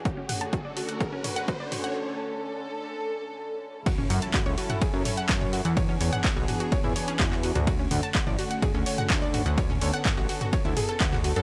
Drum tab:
RD |----------------|----------------|x---x---x---x---|x---x---x---x---|
HH |x-oxx-oxx-oxx-ox|----------------|x-oxx-oxx-oxx-ox|x-oxx-oxx-oxx-ox|
CP |----------------|----------------|----x-------x---|----x-------xx--|
T2 |--o-------o---o-|----------------|-o--o--o--o--o--|o--o--o--o--o--o|
BD |o---o---o---o---|----------------|o---o---o---o---|o---o---o---o---|

RD |x---x---x---x---|x---x---x---x---|
HH |x-oxx-oxx-oxx-ox|x-oxx-oxx-oxx-ox|
CP |----x-------x---|----x-------xx--|
T2 |--o--o--o--o--o-|-o--o--o--o--o--|
BD |o---o---o---o---|o---o---o---o---|